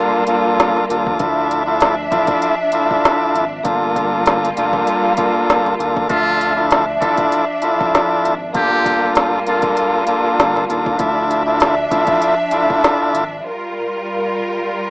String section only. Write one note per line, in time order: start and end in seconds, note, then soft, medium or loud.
0.00 1.17 G3 medium
0.00 1.17 A#3 medium
0.00 1.17 F4 medium
1.21 3.63 F3 medium
1.21 3.63 D4 medium
1.21 3.63 E5 medium
3.65 6.07 G3 medium
3.65 6.08 A#3 medium
3.65 6.07 F4 medium
6.11 8.53 F3 medium
6.11 8.53 D4 medium
6.11 8.53 E5 medium
8.55 10.97 G3 medium
8.55 10.97 A#3 medium
8.55 10.97 F4 medium
11.01 13.43 F3 medium
11.01 13.43 D4 medium
11.01 13.43 E5 medium
13.44 14.90 G3 medium
13.44 14.90 F4 medium
13.44 14.90 A#4 medium